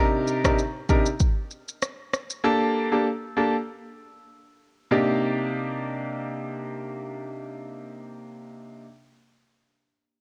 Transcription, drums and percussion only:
0.28 shaker medium
0.44 kick medium
0.44 cross-stick loud
0.44 shaker medium
0.59 shaker medium
0.89 kick medium
0.89 shaker medium
1.06 shaker medium
1.20 kick medium
1.20 shaker medium
1.51 shaker soft
1.68 shaker medium
1.82 cross-stick medium
1.82 shaker medium
2.13 cross-stick medium
2.13 shaker medium
2.30 shaker medium

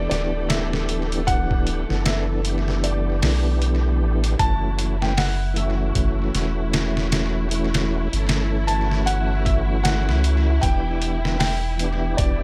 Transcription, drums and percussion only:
0.11 snare soft
0.11 closed hi-hat medium
0.50 snare loud
0.50 closed hi-hat medium
0.73 snare soft
0.89 closed hi-hat medium
1.12 closed hi-hat soft
1.28 kick loud
1.28 closed hi-hat medium
1.51 kick loud
1.67 closed hi-hat medium
1.90 snare soft
2.06 snare loud
2.06 closed hi-hat medium
2.45 closed hi-hat medium
2.68 snare soft
2.84 closed hi-hat medium
3.22 snare loud
3.22 open hi-hat medium
3.62 closed hi-hat medium
4.24 closed hi-hat medium
4.39 kick loud
4.39 closed hi-hat loud
4.79 closed hi-hat medium
5.02 snare medium
5.17 snare loud
5.17 open hi-hat medium
5.56 closed hi-hat medium
5.95 kick loud
5.95 closed hi-hat medium
6.35 snare soft
6.35 closed hi-hat medium
6.73 snare loud
6.73 closed hi-hat medium
6.97 snare soft
7.12 snare loud
7.12 closed hi-hat medium
7.51 closed hi-hat medium
7.74 snare loud
7.74 closed hi-hat medium
8.13 closed hi-hat medium
8.29 snare loud
8.29 closed hi-hat medium
8.68 closed hi-hat medium
8.91 snare soft
9.07 closed hi-hat medium
9.46 kick loud
9.46 closed hi-hat medium
9.85 snare loud
9.85 closed hi-hat medium
10.09 snare soft
10.24 closed hi-hat medium
10.63 kick loud
10.63 closed hi-hat medium
11.02 closed hi-hat medium
11.25 snare medium
11.40 snare loud
11.40 open hi-hat medium
11.79 closed hi-hat medium
12.18 kick loud
12.18 closed hi-hat medium

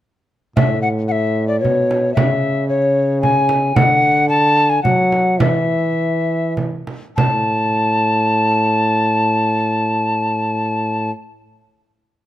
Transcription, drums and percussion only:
0.57 frame drum medium
1.65 frame drum soft
1.91 frame drum soft
2.17 frame drum medium
3.23 frame drum soft
3.49 frame drum soft
3.76 frame drum medium
4.85 frame drum medium
5.12 frame drum soft
5.40 frame drum medium
6.57 frame drum soft
6.87 frame drum soft
7.18 frame drum medium

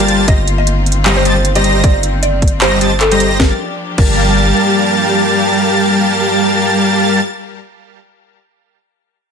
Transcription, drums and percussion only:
0.08 closed hi-hat medium
0.28 kick loud
0.28 closed hi-hat medium
0.48 closed hi-hat medium
0.67 closed hi-hat medium
0.86 closed hi-hat medium
0.92 closed hi-hat medium
1.06 clap loud
1.06 closed hi-hat medium
1.25 closed hi-hat medium
1.45 closed hi-hat medium
1.55 closed hi-hat medium
1.64 closed hi-hat medium
1.84 kick loud
1.84 closed hi-hat medium
2.03 closed hi-hat medium
2.23 closed hi-hat medium
2.42 kick medium
2.42 closed hi-hat medium
2.48 closed hi-hat medium
2.62 clap loud
2.62 closed hi-hat medium
2.81 closed hi-hat medium
3.01 clap medium
3.01 closed hi-hat medium
3.11 closed hi-hat medium
3.20 closed hi-hat medium
3.40 kick loud
3.40 snare medium
3.98 kick loud
3.98 crash medium

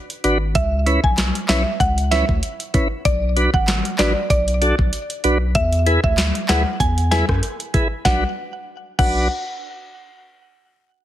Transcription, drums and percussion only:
0.10 closed hi-hat soft
0.24 closed hi-hat medium
0.55 kick medium
0.55 closed hi-hat medium
0.87 closed hi-hat medium
1.04 kick loud
1.18 snare loud
1.18 clap loud
1.18 closed hi-hat medium
1.35 closed hi-hat medium
1.49 snare loud
1.49 clap medium
1.49 closed hi-hat medium
1.80 kick medium
1.80 closed hi-hat medium
1.98 closed hi-hat medium
2.12 snare medium
2.12 closed hi-hat medium
2.29 kick medium
2.43 closed hi-hat medium
2.60 closed hi-hat soft
2.74 kick medium
2.74 closed hi-hat medium
3.05 kick loud
3.05 closed hi-hat medium
3.37 closed hi-hat medium
3.54 kick loud
3.68 snare loud
3.68 clap loud
3.68 closed hi-hat medium
3.85 closed hi-hat medium
3.99 snare loud
3.99 clap loud
3.99 closed hi-hat medium
4.30 kick medium
4.30 closed hi-hat medium
4.48 closed hi-hat medium
4.62 closed hi-hat medium
4.79 kick medium
4.93 closed hi-hat medium
5.10 closed hi-hat soft
5.24 closed hi-hat medium
5.55 kick loud
5.55 closed hi-hat medium
5.73 closed hi-hat medium
5.86 closed hi-hat medium
6.04 kick loud
6.18 snare loud
6.18 clap loud
6.18 closed hi-hat medium
6.35 closed hi-hat medium
6.49 snare loud
6.49 clap loud
6.49 closed hi-hat medium
6.80 kick loud
6.80 closed hi-hat medium
6.98 closed hi-hat medium
7.12 snare medium
7.12 closed hi-hat medium
7.29 kick medium
7.29 cross-stick loud
7.43 closed hi-hat medium
7.60 closed hi-hat soft
7.74 kick medium
7.74 closed hi-hat medium
8.05 kick loud
8.05 snare medium
8.99 kick loud
8.99 crash medium

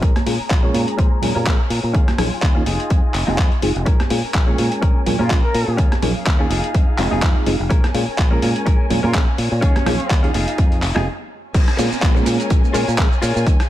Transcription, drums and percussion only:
0.03 kick loud
0.03 closed hi-hat medium
0.16 cross-stick medium
0.16 closed hi-hat medium
0.16 tambourine soft
0.16 high conga loud
0.27 open hi-hat loud
0.27 tambourine medium
0.51 kick loud
0.51 clap loud
0.51 closed hi-hat medium
0.74 open hi-hat loud
0.74 tambourine medium
0.74 high conga medium
0.88 closed hi-hat medium
0.88 tambourine soft
0.99 kick loud
0.99 closed hi-hat medium
1.22 open hi-hat loud
1.22 tambourine medium
1.22 low conga medium
1.36 tambourine soft
1.36 high conga medium
1.46 kick loud
1.46 clap loud
1.46 closed hi-hat medium
1.60 tambourine soft
1.70 open hi-hat loud
1.94 kick loud
1.94 closed hi-hat medium
2.08 cross-stick medium
2.08 closed hi-hat soft
2.08 tambourine soft
2.08 high conga medium
2.18 cross-stick medium
2.18 open hi-hat loud
2.18 tambourine medium
2.18 low conga medium
2.31 tambourine soft
2.42 kick loud
2.42 clap loud
2.42 closed hi-hat medium
2.66 open hi-hat loud
2.66 tambourine medium
2.66 high conga medium
2.80 closed hi-hat soft
2.80 tambourine soft
2.90 kick loud
2.90 closed hi-hat medium
3.14 clap medium
3.14 open hi-hat loud
3.28 tambourine soft
3.28 high conga loud
3.38 kick loud
3.38 clap loud
3.38 closed hi-hat medium
3.51 closed hi-hat soft
3.51 tambourine soft
3.62 open hi-hat loud
3.76 closed hi-hat soft
3.86 kick loud
3.86 closed hi-hat medium
4.00 cross-stick medium
4.00 closed hi-hat soft
4.00 tambourine soft
4.00 high conga medium
4.10 open hi-hat loud
4.10 tambourine medium
4.24 tambourine soft
4.34 kick loud
4.34 clap loud
4.34 closed hi-hat medium
4.58 open hi-hat loud
4.58 tambourine medium
4.58 high conga medium
4.72 closed hi-hat medium
4.82 kick loud
4.82 closed hi-hat medium
4.96 tambourine soft
5.06 open hi-hat loud
5.06 tambourine medium
5.06 low conga medium
5.19 tambourine soft
5.19 high conga medium
5.30 kick loud
5.30 clap loud
5.30 closed hi-hat medium
5.44 tambourine soft
5.54 open hi-hat loud
5.54 tambourine medium
5.78 kick loud
5.78 closed hi-hat medium
5.91 cross-stick medium
5.91 closed hi-hat medium
5.91 tambourine soft
5.91 high conga medium
6.02 open hi-hat loud
6.02 tambourine medium
6.02 low conga medium
6.26 kick loud
6.26 clap loud
6.26 closed hi-hat medium
6.50 open hi-hat loud
6.50 tambourine medium
6.50 high conga medium
6.64 closed hi-hat medium
6.64 tambourine soft
6.74 kick loud
6.74 closed hi-hat medium
6.89 tambourine soft
6.98 clap medium
6.98 open hi-hat loud
7.12 tambourine soft
7.12 high conga medium
7.22 kick loud
7.22 clap loud
7.22 closed hi-hat medium
7.35 tambourine soft
7.46 open hi-hat loud
7.46 tambourine medium
7.60 tambourine soft
7.70 kick loud
7.70 closed hi-hat medium
7.84 cross-stick medium
7.84 closed hi-hat medium
7.84 tambourine soft
7.84 high conga medium
7.94 open hi-hat loud
7.94 tambourine loud
8.08 tambourine soft
8.18 kick loud
8.18 clap loud
8.18 closed hi-hat medium
8.32 tambourine soft
8.42 open hi-hat loud
8.42 tambourine loud
8.42 high conga medium
8.55 closed hi-hat medium
8.55 tambourine soft
8.66 kick loud
8.66 closed hi-hat medium
8.66 tambourine medium
8.80 tambourine soft
8.90 open hi-hat loud
8.90 tambourine medium
8.90 low conga medium
9.04 tambourine soft
9.04 high conga loud
9.14 kick loud
9.14 clap loud
9.14 closed hi-hat medium
9.28 tambourine soft
9.38 open hi-hat loud
9.38 tambourine medium
9.52 tambourine soft
9.62 kick loud
9.62 closed hi-hat medium
9.76 cross-stick medium
9.76 closed hi-hat medium
9.76 tambourine soft
9.76 high conga medium
9.86 cross-stick medium
9.86 open hi-hat loud
9.86 tambourine medium
9.86 low conga medium
10.00 closed hi-hat soft
10.00 tambourine soft
10.10 kick loud
10.10 clap loud
10.10 closed hi-hat medium
10.24 closed hi-hat soft
10.24 tambourine soft
10.34 open hi-hat loud
10.34 tambourine medium
10.34 high conga medium
10.47 closed hi-hat medium
10.47 tambourine soft
10.58 kick loud
10.58 closed hi-hat medium
10.58 tambourine medium
10.72 closed hi-hat soft
10.72 tambourine soft
10.82 clap medium
10.82 open hi-hat loud
10.82 tambourine medium
10.96 cross-stick medium
10.96 tambourine soft
10.96 high conga medium
11.54 kick loud
11.54 closed hi-hat medium
11.54 crash loud
11.54 shaker soft
11.68 cross-stick medium
11.68 closed hi-hat medium
11.68 shaker soft
11.79 open hi-hat loud
11.79 shaker medium
11.92 shaker soft
12.02 kick loud
12.02 clap loud
12.02 closed hi-hat medium
12.02 shaker soft
12.16 shaker soft
12.26 open hi-hat loud
12.26 shaker medium
12.40 closed hi-hat medium
12.40 shaker soft
12.50 kick loud
12.50 closed hi-hat medium
12.50 shaker soft
12.64 shaker soft
12.74 open hi-hat loud
12.74 shaker medium
12.88 shaker soft
12.98 kick loud
12.98 clap loud
12.98 closed hi-hat medium
12.98 shaker soft
13.12 shaker soft
13.22 open hi-hat loud
13.22 shaker medium
13.36 shaker soft
13.47 kick loud
13.47 closed hi-hat medium
13.47 shaker soft
13.60 cross-stick medium
13.60 closed hi-hat medium
13.60 shaker soft

